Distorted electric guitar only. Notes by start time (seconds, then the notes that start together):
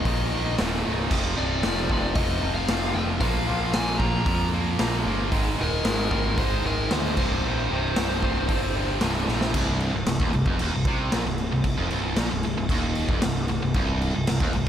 0.06 D#2 A#2 D#3
0.32 D#2 A#2 D#3
0.59 D#2 A#2 D#3
0.85 D#2 A#2 D#3
1.11 F2 C3 F3
1.37 F2 C3 F3
1.64 F2 C3 F3
1.90 F2 C3 F3
2.16 F2 C3 F3
2.42 F2 C3 F3
2.69 F2 C3 F3
2.95 F2 C3 F3
3.21 A#2 F3 A#3
3.47 A#2 F3 A#3
3.72 A#2 F3 A#3
4.00 A#2 F3 A#3
4.26 A#2 F3 A#3
4.54 A#2 F3 A#3
4.79 A#2 F3 A#3
5.06 A#2 F3 A#3
5.32 G#2 D#3 G#3
5.58 G#2 D#3 G#3
5.85 G#2 D#3 G#3
6.11 G#2 D#3 G#3
6.38 G#2 D#3 G#3
6.64 G#2 D#3 G#3
6.91 G#2 D#3 G#3
7.18 C2 G2 C3
7.45 C2 G2 C3
7.71 C2 G2 C3
7.97 C2 G2 C3
8.23 C2 G2 C3
8.49 C2 G2 C3
8.76 C2 G2 C3
9.02 C2 G2 C3
9.29 C2 G2 C3
9.56 C2
9.95 C2
10.08 C2
10.21 D#2
10.34 C2
10.47 F2
10.62 D#2
10.75 C2
10.87 C3
11.12 A#2
11.26 C2
11.52 C2
11.64 C2
11.77 F2
11.91 C2
12.17 A#2
12.31 C2
12.44 C2
12.58 C2
12.71 D#2
13.11 F2
13.23 C2
13.49 C2
13.62 C2
13.76 C2
14.15 C2
14.29 C2
14.43 D#2
14.55 C2